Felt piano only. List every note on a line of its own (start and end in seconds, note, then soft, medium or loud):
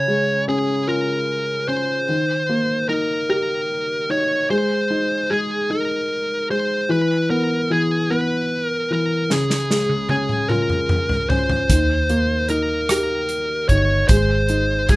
0.00 2.04 C#3 medium
0.08 1.64 G#3 soft
0.48 1.67 C#4 soft
0.88 2.05 F4 soft
1.68 2.07 C#4 soft
2.09 4.45 D#3 medium
2.49 4.05 A#3 soft
2.89 4.08 D#4 soft
3.29 4.46 G4 soft
4.10 4.48 D#4 soft
4.50 5.29 G#3 medium
4.90 5.68 D#4 soft
5.30 6.48 G#3 soft
5.70 6.86 D#4 soft
6.50 6.88 G#3 soft
6.89 7.69 E3 medium
7.30 8.09 B3 soft
7.70 8.89 E3 soft
8.10 9.26 B3 soft
8.90 9.29 E3 soft
9.30 11.66 C#3 medium
9.71 11.26 G#3 soft
10.11 11.30 C#4 soft
10.50 11.66 F4 soft
11.31 11.69 C#4 soft
11.71 14.06 D#3 medium
12.10 13.65 A#3 soft
12.50 13.70 D#4 soft
12.91 14.06 G4 soft
13.71 14.09 D#4 soft
14.11 14.89 G#3 medium
14.49 14.96 D#4 soft
14.90 14.96 G#3 soft